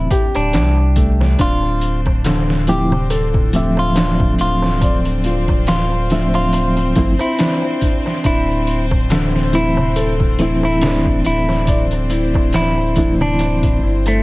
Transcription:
Already playing: D4 E4
0.10 G4, kick, closed hi-hat
0.35 D1 D4, closed hi-hat, darbuka tek
0.53 C2 D4, snare, closed hi-hat, darbuka tek
0.77 darbuka tek
0.96 A3, kick, closed hi-hat
1.21 snare, darbuka tek
1.39 D1 C4 D4 F4 C5, kick, closed hi-hat, darbuka tek
1.63 darbuka tek
1.81 closed hi-hat
2.06 kick, darbuka tek
2.24 D3, snare, closed hi-hat, darbuka tek
2.49 snare, darbuka tek
2.67 F3 A3 C4 E4 G4, closed hi-hat
2.91 darbuka tek, darbuka dum
3.10 A4, closed hi-hat, darbuka tek
3.34 kick, darbuka tek
3.53 F3 A3 C4 E5, closed hi-hat
3.77 F4, darbuka tek
3.95 D4, snare, closed hi-hat, darbuka tek
4.20 kick, darbuka tek
4.39 D1 F4, closed hi-hat
4.62 snare, darbuka tek
4.81 D5, kick, closed hi-hat, darbuka tek
5.05 closed hi-hat, darbuka tek
5.24 F4, closed hi-hat
5.48 kick, darbuka tek
5.67 F4, snare, closed hi-hat, darbuka tek
5.92 darbuka tek
6.10 F3 A3 C4 D4 E5, snare, closed hi-hat
6.34 F4, closed hi-hat, darbuka tek
6.53 closed hi-hat, darbuka tek
6.77 closed hi-hat, darbuka tek
6.96 G1 F3 A3 C4 E4, kick, closed hi-hat
7.19 E4, closed hi-hat, darbuka tek
7.39 D4, snare, closed hi-hat, darbuka tek
7.62 darbuka tek
7.81 D4, kick, closed hi-hat
8.06 snare, darbuka tek
8.24 D1 D4 E4, kick, closed hi-hat, darbuka tek
8.48 darbuka tek
8.67 closed hi-hat
8.91 kick, darbuka tek
9.10 D3, snare, closed hi-hat, darbuka tek
9.35 snare, darbuka tek
9.53 E3 A3 C4 E4, closed hi-hat
9.77 darbuka tek, darbuka dum
9.96 A4, closed hi-hat, darbuka tek
10.20 kick, darbuka tek
10.39 E3 A3 C4 E4, closed hi-hat
10.63 E4, darbuka tek
10.82 D4, snare, closed hi-hat, darbuka tek
11.06 kick, darbuka tek
11.25 D1 E4, closed hi-hat
11.49 snare, darbuka tek
11.67 D5, kick, closed hi-hat, darbuka tek
11.91 closed hi-hat, darbuka tek
12.10 E4, closed hi-hat
12.34 kick, darbuka tek
12.53 E4, snare, closed hi-hat, darbuka tek
12.78 darbuka tek
12.96 E3 A3 C4 D4 E4, kick, closed hi-hat
13.20 D4, darbuka tek, darbuka dum
13.39 closed hi-hat, darbuka tek
13.63 kick, closed hi-hat, darbuka tek
13.82 G1 E4
14.06 A3, closed hi-hat, darbuka tek

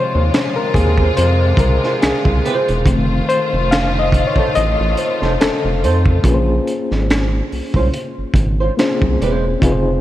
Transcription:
Already playing: C3 D#3 F3 G#3 F4 C5 C#5
0.15 D#2
0.34 finger snap, snare, closed hi-hat
0.56 A#4
0.74 D#2 G#4, kick, closed hi-hat
0.97 C4 F4 G#4 C5, kick
1.17 F2 C5, closed hi-hat
1.57 C2 A#4, kick, closed hi-hat
1.84 C4 F4 G#4 C5, snare
2.02 C2 G#4, finger snap, muted nylon-string guitar stroke, snare, closed hi-hat
2.25 C2, kick
2.45 C4 F4 G#4 C5, closed hi-hat
2.68 E1, closed hi-hat
2.86 F1 D#3 A3 C4 F4, kick, closed hi-hat
3.29 C5, closed hi-hat
3.53 F1
3.71 F5, finger snap, snare, closed hi-hat
3.99 D#5
4.12 kick, closed hi-hat
4.27 C#5
4.36 C4 D#4 A4 C5, kick
4.55 A1 D#5, closed hi-hat
4.80 A1
4.97 C5, closed hi-hat
5.22 F1 C4 D#4 A4 C5, snare
5.41 F1 A4, finger snap, muted nylon-string guitar stroke, snare, closed hi-hat
5.65 F1
5.83 F2 C4 D#4 A4 C5, closed hi-hat
6.06 kick
6.22 A#1 A#3 C#4 F4 G#4, kick, closed hi-hat
6.28 B4
6.34 C5
6.67 closed hi-hat
6.91 G#1, snare
7.10 finger snap, snare, closed hi-hat
7.52 C2, open hi-hat
7.74 C2 G#3 C#4 F4 C5, kick
7.94 closed hi-hat
8.18 G#1
8.34 G#1, kick, closed hi-hat
8.60 G#3 C#4 F4 C5
8.77 A#3 C4 F4 G#4 C5, finger snap, muted nylon-string guitar stroke, snare, closed hi-hat
8.84 C#4
9.02 C2, kick
9.21 E1 G#3 C#4 F4 C5, closed hi-hat
9.60 F1 C4 D#4 F4 G#4, kick, closed hi-hat
9.65 B4
9.72 C5

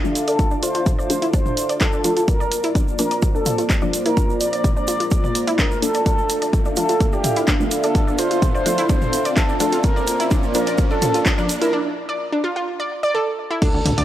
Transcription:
Already playing: D4 F4 A4 D5 E5 F5 A5, riser
0.04 F3 A3 D4, shaker
0.15 closed hi-hat, shaker
0.28 A4 D5, closed hi-hat, shaker
0.39 kick, closed hi-hat, shaker
0.51 D4, shaker
0.63 F4 C5, closed hi-hat, shaker
0.74 F4, closed hi-hat, shaker
0.86 kick, closed hi-hat, mid tom, shaker
0.98 C5 D5, shaker
1.10 F3 A3 D4, closed hi-hat, shaker
1.22 E4, closed hi-hat, shaker
1.33 D4 C5, kick, closed hi-hat, shaker
1.46 mid tom, shaker
1.57 closed hi-hat, shaker
1.69 D5, closed hi-hat, shaker
1.80 A4, kick, clap, closed hi-hat, shaker
1.93 D4, shaker
2.04 F3 A3 D4 F4 A4, closed hi-hat, shaker
2.17 F4, closed hi-hat, shaker
2.28 A#3 F4 A#4 C5 D5, kick, closed hi-hat, shaker
2.40 D5, shaker
2.52 closed hi-hat, shaker
2.63 E4, closed hi-hat, shaker
2.75 D4, kick, closed hi-hat, shaker
2.88 shaker
2.99 F3 A#3 D4 A#4, closed hi-hat, shaker
3.11 D5, closed hi-hat, shaker
3.22 kick, closed hi-hat, shaker
3.35 D4 A4, shaker
3.46 F4 A#5, closed hi-hat, mid tom, shaker
3.58 F4, closed hi-hat, shaker
3.70 kick, clap, closed hi-hat, shaker
3.82 F3 A#3 D4 D5, shaker
3.93 closed hi-hat, shaker
4.06 E4 A#4, closed hi-hat, shaker
4.17 D4, kick, closed hi-hat, shaker
4.30 shaker
4.41 D5, closed hi-hat, shaker
4.53 D5, closed hi-hat, shaker
4.64 kick, closed hi-hat, mid tom, shaker
4.76 D4 D5, shaker
4.88 F4, closed hi-hat, shaker
5.00 F4, closed hi-hat, shaker
5.11 D5, kick, closed hi-hat, shaker
5.24 D5, mid tom, shaker
5.35 closed hi-hat, shaker
5.47 E4, closed hi-hat, shaker
5.59 D4 A#4, kick, clap, closed hi-hat, shaker
5.71 shaker
5.82 F3 A#3 D4 A4, closed hi-hat, shaker
5.94 D5, closed hi-hat, shaker
6.06 D4 F4 A4 E5 F5, kick, closed hi-hat, shaker
6.18 shaker
6.29 closed hi-hat, shaker
6.42 D5, closed hi-hat, shaker
6.53 kick, closed hi-hat, shaker
6.65 D4, shaker
6.76 F3 A3 D4 F4 A4, closed hi-hat, shaker
6.89 F4, closed hi-hat, shaker
7.00 kick, closed hi-hat, shaker
7.13 G4 D5, shaker
7.24 closed hi-hat, mid tom, shaker
7.36 E4, closed hi-hat, shaker
7.47 D4, kick, clap, closed hi-hat, shaker
7.60 F3 A3 D4, shaker
7.64 A5
7.71 closed hi-hat, shaker
7.83 A4 D5, closed hi-hat, shaker
7.95 kick, closed hi-hat, shaker
8.07 D4, shaker
8.18 F4 C5, closed hi-hat, shaker
8.31 F4, closed hi-hat, shaker
8.42 kick, closed hi-hat, mid tom, shaker
8.55 C5 D5, shaker
8.66 F3 A3 D4, closed hi-hat, shaker
8.78 E4, closed hi-hat, shaker
8.89 D4 C5, kick, closed hi-hat, shaker
9.01 mid tom, shaker
9.13 closed hi-hat, shaker
9.25 D5, closed hi-hat, shaker
9.37 A4, kick, clap, closed hi-hat, shaker
9.49 D4, shaker
9.60 F3 A3 D4 F4 A4, closed hi-hat, shaker
9.72 F4, closed hi-hat, shaker
9.83 A#3 F4 A#4 C5 D5, kick, closed hi-hat, shaker
9.96 D5, shaker
10.07 closed hi-hat, shaker
10.20 E4, closed hi-hat, shaker
10.31 D4, kick, closed hi-hat, shaker
10.43 shaker
10.54 F3 A#3 D4 A#4, closed hi-hat, shaker
10.67 D5, closed hi-hat, shaker
10.78 A#5, kick, closed hi-hat, shaker
10.90 D4 A4, shaker
11.02 F4, closed hi-hat, mid tom, shaker
11.14 F4, closed hi-hat, shaker
11.26 kick, clap, closed hi-hat, shaker
11.38 F3 A#3 D4 D5, shaker
11.49 closed hi-hat, shaker
11.61 E4 A#4, closed hi-hat, shaker
11.73 D4
12.09 D5
12.32 D4
12.44 F4
12.56 F4
12.80 D5
13.03 D5
13.15 A4
13.51 E4
13.62 D4 A4 E5 F5, kick, closed hi-hat, crash, impact
13.74 D2
13.83 D2 D5, closed hi-hat, mid tom
13.98 D2 D5, closed hi-hat

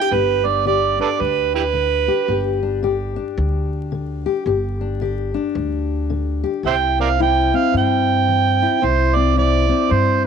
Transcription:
Already playing: B3 D4 G5
0.01 G4
0.11 G1 G2 G4 B4
0.45 D4 D5
0.65 D3 G4 D5
0.99 D4 A4 B4 D5
1.19 D2 G2 B4
1.55 E4 G4 B4
1.73 D3
2.08 G4
2.28 G1 G2 G4
2.63 D4
2.83 D3 G4
3.16 D4
3.37 D2 G2
3.92 D3
4.26 G4
4.46 G1 G2 G4
4.81 D4
5.01 D3 G4
5.34 D4
5.55 D2 G2
6.10 D3
6.43 G4
6.63 C2 C3 E4 C5 E5 G5
6.99 C4 A#4 D5 F5
7.19 E3 E4 G5
7.54 C4 F5
7.73 G2 G5
8.28 E3
8.62 E4
8.82 C2 C3 E4 C5
9.15 C4 D5
9.36 E3 E4 D5
9.69 C4
9.89 G2 C5

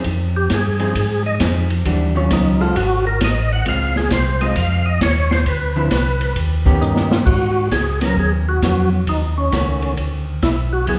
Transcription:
0.04 F2, kick, ride
0.36 G4
0.50 G2 G#4, kick, snare, hi-hat pedal, ride
0.80 F3 C4 D#4 G#4, ride
0.95 G#2, kick, ride
1.26 D#5
1.40 F2 F3 C4 D#4 G#4, kick, snare, hi-hat pedal, ride
1.70 ride
1.85 D#2 E3 G3 D4 F#4, kick, ride
2.15 D#3 F#3 C#4 F4
2.31 C#2 D#4, kick, snare, hi-hat pedal, ride
2.60 G#3 C4 F4 F#4 A4
2.76 G#1 F#4, kick, ride
3.07 A#4
3.21 A1 D#5, kick, snare, hi-hat pedal, ride
3.53 F#5
3.66 C#2 G#3 C4 F4 F5, kick, ride
3.96 G#4, snare
4.11 C2 C5, kick, snare, hi-hat pedal, ride
4.41 G#3 C4 F4 D#5, ride
4.56 F2 F5, kick, ride
4.86 D#5
5.01 D#2 C#5, kick, snare, hi-hat pedal, ride
5.31 C5, snare
5.46 D2 B4, kick, ride
5.76 D3 F3 C4 E4
5.91 C2, kick, snare, hi-hat pedal, ride
6.21 ride
6.36 D#2, kick, ride
6.65 D#3 B3 C#4 G4, kick
6.81 G2 D#4, hi-hat pedal
6.96 snare
7.11 F4, snare
7.26 G#2 F#4, kick, crash
7.71 C#2 G#4, kick, snare, hi-hat pedal, ride
8.01 F#3 B3 C#4 A#4, snare, ride
8.17 D#2 G#4, kick
8.49 F#4
8.62 F2 F#3 B3 C#4, kick, snare, hi-hat pedal, ride
9.07 D#2 D#4, kick, ride
9.38 C#4
9.52 C#2 D#3 A3 C#4 F#4, kick, snare, hi-hat pedal, ride
9.82 ride
9.97 D2, kick, ride
10.42 B1 E4, kick, snare, hi-hat pedal, ride
10.73 F#4
10.87 C#2 F#3 B3 E4 G#4, kick, ride

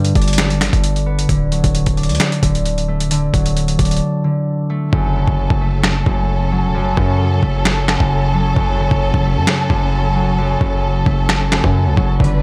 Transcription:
Already playing: G2 D3 G3 B3 D4
0.05 closed hi-hat
0.15 G1 D4, kick, closed hi-hat
0.22 closed hi-hat
0.28 closed hi-hat
0.33 closed hi-hat
0.38 finger snap, snare, closed hi-hat
0.50 closed hi-hat
0.61 D3, finger snap, snare, closed hi-hat
0.73 G1, kick, closed hi-hat
0.84 closed hi-hat
0.96 closed hi-hat
1.06 B3
1.19 closed hi-hat
1.29 D1 D3, kick, closed hi-hat
1.52 F#3, closed hi-hat
1.64 D1, kick, closed hi-hat
1.75 closed hi-hat
1.86 D1, kick, closed hi-hat
1.97 D4, closed hi-hat
2.03 closed hi-hat
2.09 D2, closed hi-hat
2.15 closed hi-hat
2.20 finger snap, snare, closed hi-hat
2.32 closed hi-hat
2.43 D1 D3, kick, closed hi-hat
2.55 closed hi-hat
2.65 closed hi-hat
2.78 closed hi-hat
2.88 A3
3.00 closed hi-hat
3.11 D3, closed hi-hat
3.34 D1 F#3, kick, closed hi-hat
3.46 closed hi-hat
3.57 closed hi-hat
3.68 closed hi-hat
3.79 D1 D4, kick, closed hi-hat, open hi-hat
3.85 closed hi-hat
3.91 closed hi-hat
3.96 closed hi-hat
4.24 D3
4.70 A3
4.93 F#1 F#2 F#3 C#4 A4, kick
5.16 C#3
5.28 F#1, kick
5.50 F#1, kick
5.61 A3
5.84 finger snap, snare
6.06 F#1 F#2, kick
6.52 F#3
6.64 E1
6.74 F#2
6.81 F#1
6.97 F#2 C#3, kick
7.43 F#1 A3, kick
7.65 finger snap, snare
7.88 F#2, finger snap, snare
8.00 F#1, kick
8.33 F#3
8.56 F#1 F#2, kick
8.79 C#3
8.91 F#1, kick
9.14 F#1, kick
9.25 A3
9.37 F#2
9.47 finger snap, snare
9.70 F#1 F#2, kick
10.15 F#3
10.38 F#2
10.61 F#1 C#3, kick
11.06 F#1 A3, kick
11.29 finger snap, snare
11.52 F#2, finger snap, snare
11.64 F#2, kick
11.87 C#2
11.97 F#1 F#3, kick
12.20 G1 D3 G3 D4 B4, kick
12.24 closed hi-hat

